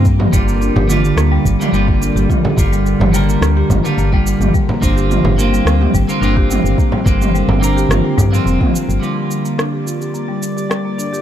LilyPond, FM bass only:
\new Staff \with { instrumentName = "FM bass" } { \clef bass \time 4/4 \key g \minor \tempo 4 = 107 g,8 g,,8. g,,8. d,8 g,,16 r16 g,,8. g,,16 | r8 g,,8. g,,8. d,8 g,,16 r16 g,,8. g,,16 | r8 g,,8. g,,8. d,8 g,,16 r16 g,,8. g,,16 | r8 g,,8. g,,8. g,,16 r16 g,8 f,,16 r8 g,,16 |
r1 | }